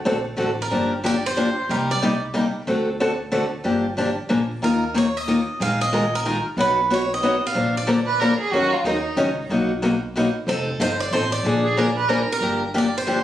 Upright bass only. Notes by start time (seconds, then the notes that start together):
0.06 A#1
0.38 A1
0.71 G1
1.69 C2
2.67 D2
3.65 G1
4.30 A#1
4.63 D#2
5.60 A#1
6.57 B1
7.55 A#1
8.52 D#2
8.84 D#2
9.17 C#2
9.49 B1
10.47 F1
10.80 G1
11.11 A1
11.43 A#1
12.41 G1